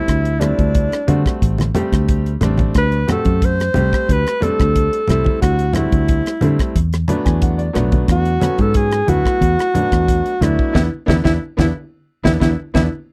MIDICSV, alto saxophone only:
0, 0, Header, 1, 2, 480
1, 0, Start_track
1, 0, Tempo, 665927
1, 63, Time_signature, 4, 2, 24, 8
1, 9463, End_track
2, 0, Start_track
2, 0, Title_t, "Alto saxophone"
2, 0, Program_c, 0, 65
2, 0, Note_on_c, 0, 64, 88
2, 285, Note_on_c, 0, 62, 74
2, 296, Note_off_c, 0, 64, 0
2, 1014, Note_off_c, 0, 62, 0
2, 2001, Note_on_c, 0, 71, 86
2, 2215, Note_off_c, 0, 71, 0
2, 2247, Note_on_c, 0, 69, 83
2, 2487, Note_on_c, 0, 72, 86
2, 2498, Note_off_c, 0, 69, 0
2, 2971, Note_on_c, 0, 71, 87
2, 2982, Note_off_c, 0, 72, 0
2, 3193, Note_on_c, 0, 69, 80
2, 3204, Note_off_c, 0, 71, 0
2, 3668, Note_off_c, 0, 69, 0
2, 3681, Note_on_c, 0, 69, 80
2, 3895, Note_off_c, 0, 69, 0
2, 3905, Note_on_c, 0, 66, 82
2, 4143, Note_on_c, 0, 64, 76
2, 4154, Note_off_c, 0, 66, 0
2, 4863, Note_off_c, 0, 64, 0
2, 5847, Note_on_c, 0, 66, 87
2, 6206, Note_on_c, 0, 69, 83
2, 6217, Note_off_c, 0, 66, 0
2, 6317, Note_on_c, 0, 68, 83
2, 6328, Note_off_c, 0, 69, 0
2, 6552, Note_on_c, 0, 66, 102
2, 6563, Note_off_c, 0, 68, 0
2, 7514, Note_on_c, 0, 64, 89
2, 7524, Note_off_c, 0, 66, 0
2, 7746, Note_off_c, 0, 64, 0
2, 7750, Note_on_c, 0, 64, 80
2, 7807, Note_off_c, 0, 64, 0
2, 7989, Note_on_c, 0, 64, 82
2, 8047, Note_off_c, 0, 64, 0
2, 8109, Note_on_c, 0, 64, 87
2, 8164, Note_off_c, 0, 64, 0
2, 8357, Note_on_c, 0, 64, 78
2, 8410, Note_off_c, 0, 64, 0
2, 8827, Note_on_c, 0, 64, 82
2, 8883, Note_off_c, 0, 64, 0
2, 8951, Note_on_c, 0, 64, 73
2, 9008, Note_off_c, 0, 64, 0
2, 9188, Note_on_c, 0, 64, 78
2, 9246, Note_off_c, 0, 64, 0
2, 9463, End_track
0, 0, End_of_file